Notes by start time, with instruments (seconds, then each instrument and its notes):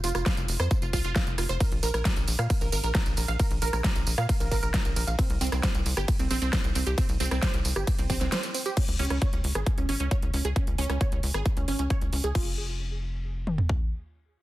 0.04 analog synth bass F1, synth pluck F4, open hi-hat, tambourine
0.09 closed hi-hat
0.15 analog synth bass F1, synth pluck F4, cross-stick, closed hi-hat, tambourine
0.26 synth pluck F5, kick, snare, closed hi-hat, tambourine
0.37 analog synth bass F1, closed hi-hat, tambourine
0.48 analog synth bass F1, open hi-hat, tambourine
0.60 analog synth bass F2, synth pluck C5, cross-stick, closed hi-hat, tambourine
0.71 kick, closed hi-hat, tambourine
0.82 analog synth bass F1, synth pluck F4, closed hi-hat, tambourine
0.93 analog synth bass C2, synth pluck F4, kick, open hi-hat, tambourine
1.04 analog synth bass F1, synth pluck F4, closed hi-hat, tambourine
1.16 synth pluck F5, kick, snare, closed hi-hat, tambourine
1.27 analog synth bass F1, closed hi-hat, tambourine
1.38 analog synth bass F1, synth pluck F4, cross-stick, open hi-hat, tambourine
1.49 analog synth bass F1, synth pluck C5, closed hi-hat, tambourine
1.60 synth pluck A#4, kick, closed hi-hat, ride, tambourine
1.72 analog synth bass A#1, closed hi-hat
1.83 analog synth bass A#1, synth pluck A#4, open hi-hat, tambourine
1.88 closed hi-hat
1.94 analog synth bass A#1, synth pluck A#4, cross-stick, closed hi-hat, tambourine
2.05 synth pluck A#5, kick, snare, closed hi-hat, ride, tambourine
2.16 analog synth bass A#1, closed hi-hat, tambourine
2.28 analog synth bass A#1, open hi-hat, tambourine
2.39 analog synth bass A#2, synth pluck F5, cross-stick, closed hi-hat, tambourine
2.50 kick, closed hi-hat, ride, tambourine
2.61 analog synth bass A#1, synth pluck A#4, closed hi-hat, tambourine
2.72 analog synth bass G#1, synth pluck A#4, open hi-hat, tambourine
2.84 analog synth bass A#1, synth pluck A#4, closed hi-hat, tambourine
2.95 synth pluck A#5, kick, snare, closed hi-hat, ride, tambourine
3.06 analog synth bass A#1, closed hi-hat, tambourine
3.17 analog synth bass A#1, synth pluck A#4, open hi-hat, tambourine
3.28 analog synth bass A#1, synth pluck F5, closed hi-hat, tambourine
3.39 synth pluck A#4, kick, closed hi-hat, ride, tambourine
3.51 analog synth bass A#1, closed hi-hat
3.62 analog synth bass A#1, synth pluck A#4, open hi-hat, tambourine
3.67 closed hi-hat
3.73 analog synth bass A#1, synth pluck A#4, cross-stick, closed hi-hat, tambourine
3.84 synth pluck A#5, kick, snare, closed hi-hat, ride, tambourine
3.96 analog synth bass A#1, closed hi-hat, tambourine
4.07 analog synth bass A#1, open hi-hat, tambourine
4.18 analog synth bass A#2, synth pluck F5, cross-stick, closed hi-hat, tambourine
4.29 kick, closed hi-hat, ride, tambourine
4.40 analog synth bass A#1, synth pluck A#4, closed hi-hat, tambourine
4.51 analog synth bass G#1, synth pluck A#4, kick, open hi-hat, tambourine
4.63 analog synth bass A#1, synth pluck A#4, closed hi-hat, tambourine
4.74 synth pluck A#5, kick, snare, closed hi-hat, ride, tambourine
4.85 analog synth bass A#1, closed hi-hat, tambourine
4.96 analog synth bass A#1, synth pluck A#4, open hi-hat, tambourine
5.07 analog synth bass A#1, synth pluck F5, closed hi-hat, tambourine
5.19 synth pluck C4, kick, closed hi-hat, ride, tambourine
5.30 analog synth bass C2, closed hi-hat
5.41 analog synth bass C2, synth pluck C4, open hi-hat, tambourine
5.47 closed hi-hat
5.52 analog synth bass C2, synth pluck C4, cross-stick, closed hi-hat, tambourine
5.63 synth pluck C5, kick, snare, closed hi-hat, ride, tambourine
5.75 analog synth bass C2, closed hi-hat, tambourine
5.86 analog synth bass C2, open hi-hat, tambourine
5.97 analog synth bass G1, synth pluck G4, cross-stick, tambourine
6.08 kick, closed hi-hat, ride, tambourine
6.19 analog synth bass C2, synth pluck C4, closed hi-hat, tambourine
6.31 analog synth bass A#1, synth pluck C4, open hi-hat, tambourine
6.42 analog synth bass C2, synth pluck C4, closed hi-hat, tambourine
6.53 synth pluck C5, kick, snare, closed hi-hat, ride, tambourine
6.64 analog synth bass C2, closed hi-hat, tambourine
6.75 analog synth bass C2, synth pluck C4, open hi-hat, tambourine
6.87 analog synth bass C2, synth pluck G4, closed hi-hat, tambourine
6.98 synth pluck C4, kick, closed hi-hat, ride, tambourine
7.09 analog synth bass C2, closed hi-hat, tambourine
7.20 analog synth bass C2, synth pluck C4, open hi-hat, tambourine
7.26 closed hi-hat
7.31 analog synth bass C2, synth pluck C4, cross-stick, closed hi-hat, tambourine
7.43 synth pluck C5, kick, snare, closed hi-hat, ride, tambourine
7.54 analog synth bass C2, closed hi-hat, tambourine
7.65 analog synth bass C2, open hi-hat, tambourine
7.76 analog synth bass G1, synth pluck G4, cross-stick, closed hi-hat, tambourine
7.87 kick, closed hi-hat, ride, tambourine
7.98 analog synth bass C2, synth pluck C4, closed hi-hat, tambourine
8.10 analog synth bass A#1, synth pluck C4, kick, open hi-hat, tambourine
8.21 analog synth bass C2, synth pluck C4, snare, closed hi-hat, tambourine
8.32 synth pluck C5, snare, closed hi-hat, ride, tambourine
8.43 closed hi-hat, tambourine
8.54 synth pluck C4, open hi-hat, tambourine
8.66 synth pluck G4, closed hi-hat, tambourine
8.77 synth pluck C#4, kick, closed hi-hat, crash
8.88 analog synth bass C#2, closed hi-hat
8.99 analog synth bass C#2, synth pluck C#4, open hi-hat
9.05 closed hi-hat
9.10 analog synth bass C#2, synth pluck C#4, cross-stick, closed hi-hat
9.22 synth pluck C#5, kick, closed hi-hat
9.33 analog synth bass C#2, closed hi-hat
9.44 analog synth bass C#2, open hi-hat
9.55 analog synth bass G#1, synth pluck G#4, cross-stick, closed hi-hat
9.66 kick, closed hi-hat
9.78 analog synth bass C#2, synth pluck C#4, closed hi-hat
9.89 analog synth bass G#1, synth pluck C#4, open hi-hat
10.00 analog synth bass C#2, synth pluck C#4, closed hi-hat
10.11 synth pluck C#5, kick, closed hi-hat
10.22 analog synth bass C#2, closed hi-hat
10.34 analog synth bass C#2, synth pluck C#4, open hi-hat
10.45 analog synth bass C#2, synth pluck G#4, closed hi-hat
10.56 synth pluck C#4, kick, closed hi-hat
10.67 analog synth bass C#2, closed hi-hat
10.78 analog synth bass C#2, synth pluck C#4, open hi-hat
10.84 closed hi-hat
10.90 analog synth bass C#2, synth pluck C#4, cross-stick, closed hi-hat
11.01 synth pluck C#5, kick, closed hi-hat
11.12 analog synth bass C#2, closed hi-hat
11.23 analog synth bass C#2, open hi-hat
11.34 analog synth bass G#1, synth pluck G#4, cross-stick, closed hi-hat
11.46 kick, closed hi-hat
11.57 analog synth bass C#2, synth pluck C#4, closed hi-hat
11.68 analog synth bass G#1, synth pluck C#4, open hi-hat
11.79 analog synth bass C#2, synth pluck C#4, closed hi-hat
11.90 synth pluck C#5, kick, closed hi-hat
12.01 analog synth bass C#2, closed hi-hat
12.13 analog synth bass C#2, synth pluck C#4, open hi-hat
12.24 analog synth bass C#2, synth pluck G#4, closed hi-hat
12.35 analog synth bass F1, synth pluck F4, kick, crash
13.47 mid tom
13.58 floor tom
13.69 kick